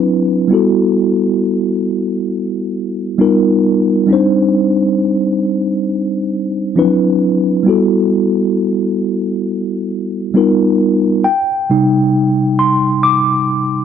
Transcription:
0.00 0.49 F#3 medium
0.00 0.49 C4 soft
0.00 0.49 D4 medium
0.00 0.50 E4 medium
0.00 0.50 B4 medium
0.48 3.13 G3 medium
0.48 3.14 B3 medium
0.48 3.15 E4 medium
0.53 3.15 F#4 medium
0.53 3.16 A4 medium
3.18 4.05 G3 medium
3.18 4.08 B3 medium
3.18 4.08 D#4 medium
3.18 4.09 F4 medium
3.18 4.09 A#4 medium
4.06 6.71 G3 medium
4.06 6.72 C4 medium
4.06 6.73 D4 medium
4.11 6.74 D#4 medium
4.11 6.75 C5 medium
6.75 6.83 F3 soft
6.75 7.66 C4 medium
6.75 7.66 D4 medium
6.75 7.65 E4 medium
6.75 7.67 B4 medium
6.82 7.69 F#3 medium
7.63 10.29 G3 medium
7.63 10.30 B3 medium
7.63 10.30 E4 soft
7.68 10.31 F#4 medium
7.68 10.32 A4 medium
10.34 11.24 G3 medium
10.34 11.24 B3 medium
10.34 11.24 D#4 medium
10.34 11.25 F4 medium
10.34 11.25 A#4 medium
11.24 12.54 G5 medium
11.70 13.85 C3 medium
11.70 13.85 G3 medium
11.70 13.85 D#4 medium
12.59 12.79 C6 medium
13.03 13.85 D6 loud

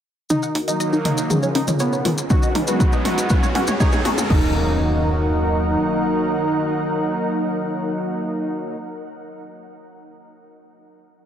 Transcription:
0.30 1.29 D#3 medium
0.30 0.42 D#4 loud
0.30 0.53 D#4 loud
0.30 1.70 D#4 medium
0.30 1.29 D#4 medium
0.30 1.29 F#4 medium
0.30 1.29 A#4 medium
0.30 closed hi-hat soft
0.30 mid tom soft
0.30 riser medium
0.30 maracas medium
0.43 1.70 A#4 medium
0.43 0.49 F#5 loud
0.43 maracas soft
0.55 0.64 D#2 medium
0.55 0.61 D#4 loud
0.55 open hi-hat loud
0.68 0.77 D#1 medium
0.68 1.29 F#3 loud
0.68 1.29 A#3 medium
0.68 0.91 D#4 medium
0.68 1.29 D#4 loud
0.68 0.74 D#5 medium
0.68 closed hi-hat soft
0.68 maracas medium
0.80 0.92 D#5 loud
0.80 closed hi-hat soft
0.80 maracas medium
0.93 1.02 D#1 medium
0.93 0.99 D#4 loud
0.93 maracas soft
1.05 1.14 D#2 medium
1.05 1.36 D#4 medium
1.05 open hi-hat loud
1.05 mid tom medium
1.18 1.27 D#1 medium
1.18 1.24 D#4 medium
1.18 closed hi-hat soft
1.18 maracas medium
1.30 2.29 C#3 medium
1.30 1.48 F3 medium
1.30 1.48 G#3 medium
1.30 2.70 C#4 medium
1.30 1.48 C#4 medium
1.30 2.29 C#4 medium
1.30 2.29 F4 medium
1.30 1.40 G#4 medium
1.30 2.29 G#4 medium
1.30 closed hi-hat soft
1.30 mid tom medium
1.30 maracas medium
1.43 1.49 C#5 medium
1.43 maracas soft
1.55 1.64 C#2 medium
1.55 1.61 C#4 loud
1.55 1.71 D#4 medium
1.55 open hi-hat loud
1.68 1.77 C#2 medium
1.68 3.70 G#4 medium
1.68 1.74 C#5 medium
1.68 closed hi-hat soft
1.68 mid tom medium
1.68 maracas medium
1.79 2.11 B3 loud
1.79 1.92 C#5 loud
1.79 closed hi-hat soft
1.79 maracas medium
1.93 2.03 C#5 medium
1.93 maracas soft
2.05 2.14 G#1 medium
2.05 2.11 F4 medium
2.05 open hi-hat loud
2.05 mid tom medium
2.18 2.27 C#2 medium
2.18 closed hi-hat soft
2.18 maracas medium
2.30 3.29 G#3 medium
2.30 3.70 B3 medium
2.30 3.29 D#4 medium
2.30 2.42 D#4 loud
2.30 2.53 F#4 loud
2.30 4.28 F#4 medium
2.30 3.29 B4 medium
2.30 kick loud
2.30 closed hi-hat soft
2.30 mid tom medium
2.30 maracas medium
2.43 2.49 D#5 loud
2.43 maracas soft
2.55 2.61 D#4 loud
2.55 open hi-hat loud
2.55 mid tom medium
2.67 2.77 G#2 medium
2.67 3.27 F#3 medium
2.67 3.27 G#3 medium
2.67 3.27 B3 medium
2.67 2.91 F#4 medium
2.67 2.74 B4 medium
2.67 closed hi-hat soft
2.67 maracas medium
2.75 4.30 F#5 medium
2.80 2.92 B4 loud
2.80 kick loud
2.80 closed hi-hat soft
2.80 mid tom medium
2.80 maracas medium
2.92 3.02 G#2 medium
2.92 2.99 D#4 loud
2.92 maracas soft
3.05 3.36 F#4 medium
3.05 open hi-hat loud
3.05 mid tom medium
3.18 3.27 G#2 medium
3.18 3.24 D#4 medium
3.18 closed hi-hat soft
3.18 maracas medium
3.29 3.42 F#3 medium
3.29 4.29 B3 medium
3.29 3.42 B3 medium
3.29 4.29 C#4 medium
3.29 3.42 C#4 loud
3.29 3.40 B4 medium
3.29 kick loud
3.29 closed hi-hat soft
3.29 mid tom medium
3.29 maracas medium
3.43 3.49 C#5 medium
3.43 mid tom medium
3.43 maracas soft
3.55 3.64 B1 medium
3.55 3.61 C#4 loud
3.55 3.71 F#4 medium
3.55 open hi-hat loud
3.55 mid tom loud
3.67 3.74 C#5 medium
3.67 closed hi-hat soft
3.67 mid tom medium
3.67 maracas medium
3.80 4.11 D#4 medium
3.80 3.92 C#5 loud
3.80 kick loud
3.80 closed hi-hat soft
3.80 mid tom loud
3.80 maracas medium
3.92 4.03 C#5 medium
3.92 mid tom medium
3.92 maracas soft
4.05 4.11 F#4 medium
4.05 open hi-hat loud
4.05 mid tom loud
4.18 closed hi-hat soft
4.18 mid tom loud
4.18 maracas medium
4.30 5.76 D#2 loud
4.30 8.75 D#3 medium
4.30 8.75 F#3 medium
4.30 8.75 A#3 medium
4.30 8.75 D#4 loud
4.30 8.75 D#4 medium
4.30 4.53 D#4 medium
4.30 8.75 D#4 medium
4.30 8.76 D#4 medium
4.30 8.75 F#4 medium
4.30 8.75 A#4 medium
4.30 kick loud
4.30 crash medium
4.30 impact medium
4.38 8.83 A#4 medium
4.46 8.91 F#5 medium

